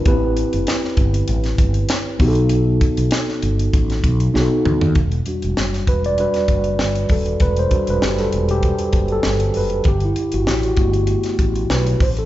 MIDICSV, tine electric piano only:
0, 0, Header, 1, 2, 480
1, 0, Start_track
1, 0, Key_signature, 1, "minor"
1, 0, Tempo, 612870
1, 45, Time_signature, 4, 2, 24, 8
1, 9597, End_track
2, 0, Start_track
2, 0, Title_t, "Tine electric piano"
2, 0, Program_c, 0, 4
2, 0, Control_c, 0, 64, 127
2, 40, Note_on_c, 0, 59, 63
2, 45, Note_on_c, 0, 64, 72
2, 53, Note_on_c, 0, 67, 71
2, 56, Control_c, 0, 64, 0
2, 61, Note_on_c, 0, 71, 90
2, 91, Note_on_c, 0, 60, 84
2, 98, Note_off_c, 0, 59, 0
2, 198, Control_c, 0, 64, 127
2, 1693, Note_off_c, 0, 64, 0
2, 1697, Note_off_c, 0, 67, 0
2, 1701, Note_off_c, 0, 71, 0
2, 1714, Note_on_c, 0, 59, 75
2, 1716, Note_off_c, 0, 60, 0
2, 1723, Note_on_c, 0, 63, 72
2, 1729, Note_on_c, 0, 66, 65
2, 1734, Note_on_c, 0, 67, 70
2, 1736, Control_c, 0, 64, 0
2, 1784, Note_off_c, 0, 67, 0
2, 1784, Note_on_c, 0, 69, 87
2, 1849, Control_c, 0, 64, 127
2, 3367, Note_off_c, 0, 59, 0
2, 3372, Note_off_c, 0, 63, 0
2, 3375, Note_off_c, 0, 66, 0
2, 3398, Note_on_c, 0, 59, 74
2, 3400, Note_on_c, 0, 63, 69
2, 3402, Note_off_c, 0, 69, 0
2, 3402, Note_on_c, 0, 66, 75
2, 3408, Note_on_c, 0, 68, 67
2, 3415, Control_c, 0, 64, 0
2, 3459, Note_on_c, 0, 69, 83
2, 3461, Note_off_c, 0, 68, 0
2, 3551, Control_c, 0, 64, 127
2, 3881, Note_off_c, 0, 59, 0
2, 3882, Note_off_c, 0, 63, 0
2, 3883, Note_off_c, 0, 66, 0
2, 3895, Control_c, 0, 64, 0
2, 3911, Note_off_c, 0, 69, 0
2, 4033, Control_c, 0, 64, 127
2, 4124, Note_on_c, 0, 55, 51
2, 4131, Note_on_c, 0, 62, 47
2, 4135, Note_on_c, 0, 66, 58
2, 4610, Note_on_c, 0, 71, 94
2, 4728, Note_off_c, 0, 71, 0
2, 4745, Note_on_c, 0, 74, 101
2, 4792, Note_off_c, 0, 74, 0
2, 4839, Note_off_c, 0, 55, 0
2, 4842, Note_off_c, 0, 62, 0
2, 4844, Note_off_c, 0, 66, 0
2, 4848, Note_on_c, 0, 55, 49
2, 4852, Note_on_c, 0, 62, 46
2, 4854, Note_on_c, 0, 66, 55
2, 4859, Note_on_c, 0, 71, 95
2, 5063, Note_off_c, 0, 55, 0
2, 5065, Note_off_c, 0, 62, 0
2, 5066, Note_off_c, 0, 66, 0
2, 5541, Note_off_c, 0, 71, 0
2, 5573, Note_on_c, 0, 69, 81
2, 5679, Note_off_c, 0, 69, 0
2, 5812, Note_on_c, 0, 71, 93
2, 5942, Note_off_c, 0, 71, 0
2, 5947, Note_on_c, 0, 72, 97
2, 6037, Note_on_c, 0, 55, 57
2, 6042, Note_on_c, 0, 62, 50
2, 6048, Note_on_c, 0, 66, 56
2, 6188, Note_off_c, 0, 72, 0
2, 6190, Note_on_c, 0, 71, 91
2, 6296, Note_off_c, 0, 71, 0
2, 6296, Note_on_c, 0, 67, 84
2, 6421, Note_on_c, 0, 69, 83
2, 6424, Note_off_c, 0, 67, 0
2, 6642, Note_off_c, 0, 69, 0
2, 6664, Note_on_c, 0, 67, 99
2, 6731, Note_off_c, 0, 55, 0
2, 6733, Note_off_c, 0, 62, 0
2, 6736, Note_off_c, 0, 66, 0
2, 7144, Note_on_c, 0, 69, 91
2, 7154, Note_off_c, 0, 67, 0
2, 7495, Note_on_c, 0, 71, 85
2, 7501, Note_off_c, 0, 69, 0
2, 7738, Note_off_c, 0, 71, 0
2, 7738, Control_c, 0, 64, 0
2, 7739, Note_on_c, 0, 67, 91
2, 7866, Note_off_c, 0, 67, 0
2, 7870, Note_on_c, 0, 64, 76
2, 7877, Control_c, 0, 64, 127
2, 8098, Note_on_c, 0, 66, 79
2, 8111, Note_off_c, 0, 64, 0
2, 8148, Note_off_c, 0, 66, 0
2, 8211, Note_on_c, 0, 67, 78
2, 8343, Note_off_c, 0, 67, 0
2, 8343, Note_on_c, 0, 66, 73
2, 8436, Note_off_c, 0, 66, 0
2, 8439, Note_on_c, 0, 57, 54
2, 8442, Note_on_c, 0, 59, 55
2, 8445, Note_on_c, 0, 66, 65
2, 9132, Note_off_c, 0, 57, 0
2, 9134, Note_off_c, 0, 59, 0
2, 9135, Note_off_c, 0, 66, 0
2, 9176, Note_on_c, 0, 71, 82
2, 9395, Note_off_c, 0, 71, 0
2, 9416, Note_on_c, 0, 72, 77
2, 9418, Control_c, 0, 64, 0
2, 9472, Note_off_c, 0, 72, 0
2, 9535, Control_c, 0, 64, 127
2, 9545, Note_on_c, 0, 69, 79
2, 9597, Note_off_c, 0, 69, 0
2, 9597, End_track
0, 0, End_of_file